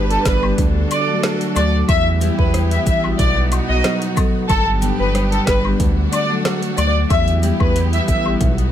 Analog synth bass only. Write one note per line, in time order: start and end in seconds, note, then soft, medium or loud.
0.00 0.17 G1 loud
0.26 0.52 G1 medium
0.58 0.85 D2 loud
1.56 1.83 D2 medium
1.89 2.30 E2 loud
2.39 2.78 E2 loud
2.86 3.13 A1 medium
3.19 3.60 B1 loud
3.69 3.82 B1 medium
4.50 4.91 G1 loud
5.00 5.39 G1 loud
5.47 5.74 G1 medium
5.80 6.07 D2 loud
6.78 7.05 D2 loud
7.10 7.52 E2 loud
7.60 8.00 E2 loud
8.08 8.35 A1 medium
8.41 8.72 B1 loud